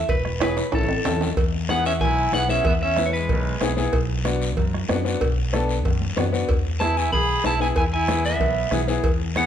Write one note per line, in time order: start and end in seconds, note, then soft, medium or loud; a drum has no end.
0.00 0.11 E5 medium
0.09 0.60 E1 loud
0.09 0.39 B4 medium
0.09 bombo low medium
0.09 cowbell medium
0.09 high conga soft
0.09 low conga medium
0.09 long guiro medium
0.25 bombo rim medium
0.25 high conga medium
0.40 0.52 B3 medium
0.40 0.52 E4 medium
0.40 0.52 G#4 medium
0.40 0.72 B4 medium
0.40 bombo rim medium
0.40 cowbell medium
0.40 high conga medium
0.40 high timbale loud
0.40 short guiro medium
0.57 high timbale medium
0.57 short guiro medium
0.72 0.99 A1 loud
0.72 0.84 C#4 medium
0.72 0.84 E4 medium
0.72 0.84 A4 medium
0.72 1.19 A4 medium
0.72 bombo low medium
0.72 cowbell medium
0.72 high timbale medium
0.72 long guiro medium
0.84 low conga medium
0.88 low timbale medium
1.05 1.31 E2 medium
1.05 1.27 C#4 medium
1.05 1.27 E4 medium
1.05 1.28 A4 medium
1.05 bombo rim medium
1.05 cowbell medium
1.05 low conga medium
1.05 low timbale loud
1.05 short guiro medium
1.16 low conga medium
1.21 low timbale medium
1.21 short guiro medium
1.27 low conga medium
1.37 2.02 E2 loud
1.37 bombo low medium
1.37 cowbell loud
1.37 long guiro medium
1.53 high conga soft
1.69 1.91 B3 medium
1.69 1.85 B3 medium
1.69 1.92 E4 medium
1.69 1.92 G#4 medium
1.69 1.85 F#5 loud
1.69 bombo rim medium
1.69 high conga loud
1.69 short guiro medium
1.85 1.93 C#4 medium
1.85 1.91 E5 medium
1.85 short guiro medium
2.01 2.27 B1 medium
2.01 2.32 E4 medium
2.01 2.34 G#5 medium
2.01 bombo low medium
2.01 cowbell medium
2.01 high conga soft
2.01 low conga medium
2.01 long guiro medium
2.32 2.58 B1 loud
2.32 2.39 B3 medium
2.32 2.49 B3 medium
2.32 2.39 E4 medium
2.32 2.39 G#4 medium
2.32 2.49 F#5 loud
2.32 bombo rim medium
2.32 high conga medium
2.32 short guiro medium
2.48 2.66 B3 medium
2.48 2.65 C#4 medium
2.48 2.66 E4 medium
2.48 2.66 G#4 medium
2.48 2.65 E5 loud
2.48 high conga medium
2.48 short guiro medium
2.64 3.30 E2 medium
2.64 2.74 B3 medium
2.64 2.72 E5 medium
2.64 bombo low medium
2.64 cowbell loud
2.64 low conga medium
2.64 long guiro medium
2.81 3.06 C#4 medium
2.81 3.05 E5 medium
2.81 high conga soft
2.96 3.20 B3 medium
2.96 3.20 E4 medium
2.96 3.20 B4 medium
2.96 bombo rim medium
2.96 high conga medium
2.96 short guiro medium
3.06 3.13 A3 soft
3.06 3.13 C#5 medium
3.13 3.74 G#3 medium
3.13 3.73 B4 medium
3.13 short guiro medium
3.29 3.55 B1 loud
3.29 bombo low medium
3.29 cowbell medium
3.29 high conga soft
3.29 low conga medium
3.29 long guiro medium
3.61 3.87 B1 loud
3.61 3.67 B3 medium
3.61 3.67 E4 medium
3.61 3.67 G#4 loud
3.61 bombo rim medium
3.61 high conga medium
3.61 low timbale medium
3.61 short guiro medium
3.77 3.93 B3 medium
3.77 3.93 E4 medium
3.77 3.93 G#4 medium
3.77 high conga medium
3.77 short guiro medium
3.93 4.58 B1 loud
3.93 bombo low medium
3.93 cowbell loud
3.93 long guiro medium
4.09 high conga soft
4.25 4.47 B3 medium
4.25 4.47 D4 medium
4.25 4.48 F#4 loud
4.25 bombo rim medium
4.25 high conga medium
4.25 short guiro medium
4.42 short guiro medium
4.57 4.83 F#2 loud
4.57 bombo low medium
4.57 cowbell medium
4.57 high conga soft
4.57 low conga medium
4.57 long guiro medium
4.74 bombo rim medium
4.74 high conga medium
4.89 5.15 F#2 loud
4.89 4.95 B3 medium
4.89 4.95 D4 medium
4.89 4.95 F#4 loud
4.89 bombo rim medium
4.89 high conga medium
4.89 low timbale medium
4.89 short guiro medium
5.05 5.22 B3 medium
5.05 5.22 D4 medium
5.05 5.22 F#4 medium
5.05 short guiro medium
5.21 5.85 B1 loud
5.21 bombo low loud
5.21 cowbell loud
5.21 long guiro medium
5.38 high conga soft
5.53 5.75 B3 medium
5.53 5.76 D4 medium
5.53 5.76 A4 loud
5.53 bombo rim medium
5.53 high conga loud
5.53 short guiro medium
5.69 short guiro medium
5.85 6.11 F#2 loud
5.85 bombo low medium
5.85 cowbell medium
5.85 high conga soft
5.85 low conga medium
5.85 long guiro medium
6.01 high conga medium
6.16 6.43 F#2 loud
6.16 6.22 B3 medium
6.16 6.23 D4 medium
6.16 6.23 F#4 medium
6.16 bombo rim medium
6.16 high conga medium
6.16 low conga medium
6.16 low timbale medium
6.16 short guiro medium
6.33 6.49 B3 medium
6.33 6.49 D4 medium
6.33 6.49 F#4 medium
6.33 short guiro medium
6.49 7.13 E2 medium
6.49 bombo low medium
6.49 cowbell loud
6.49 long guiro medium
6.65 high conga soft
6.80 7.03 B3 medium
6.80 7.03 E4 medium
6.80 6.98 E4 medium
6.80 7.03 G#4 medium
6.80 6.97 A5 loud
6.80 bombo rim medium
6.80 high conga medium
6.80 short guiro medium
6.97 7.13 E4 medium
6.97 7.12 G#5 loud
6.97 short guiro medium
7.12 7.38 B1 loud
7.12 7.43 G#4 loud
7.12 7.46 B5 loud
7.12 bombo low medium
7.12 cowbell medium
7.12 high conga soft
7.12 low conga medium
7.12 long guiro medium
7.44 7.70 B1 medium
7.44 7.50 B3 medium
7.44 7.50 E4 medium
7.44 7.60 E4 medium
7.44 7.50 G#4 medium
7.44 7.61 A5 loud
7.44 bombo rim medium
7.44 high conga medium
7.44 short guiro medium
7.60 7.77 B3 medium
7.60 7.77 E4 medium
7.60 7.69 E4 medium
7.60 7.78 G#4 medium
7.60 7.67 G#5 medium
7.60 short guiro medium
7.76 8.40 E2 loud
7.76 7.85 E4 medium
7.76 7.83 G#5 medium
7.76 bombo low medium
7.76 cowbell loud
7.76 long guiro medium
7.92 8.23 E4 medium
7.92 8.23 G#5 medium
7.92 high conga soft
8.08 8.31 B3 medium
8.08 8.31 E4 medium
8.08 8.31 G#4 medium
8.08 bombo rim medium
8.08 high conga loud
8.08 short guiro medium
8.25 8.85 B3 medium
8.25 8.85 E5 medium
8.25 short guiro medium
8.40 8.66 B1 loud
8.40 bombo low medium
8.40 cowbell medium
8.40 high conga soft
8.40 low conga medium
8.40 long guiro medium
8.71 8.97 B1 loud
8.71 8.78 B3 medium
8.71 8.78 E4 medium
8.71 8.78 G#4 loud
8.71 bombo rim medium
8.71 high conga medium
8.71 low conga medium
8.71 short guiro medium
8.87 9.05 B3 medium
8.87 9.05 E4 medium
8.87 9.05 G#4 loud
8.87 short guiro medium
9.04 9.46 E2 medium
9.04 bombo low medium
9.04 cowbell loud
9.04 long guiro medium
9.20 high conga soft
9.36 9.46 B3 medium
9.36 9.46 E4 medium
9.36 9.46 G#4 medium
9.36 9.46 F#5 loud
9.36 bombo rim medium
9.36 high conga medium
9.36 short guiro medium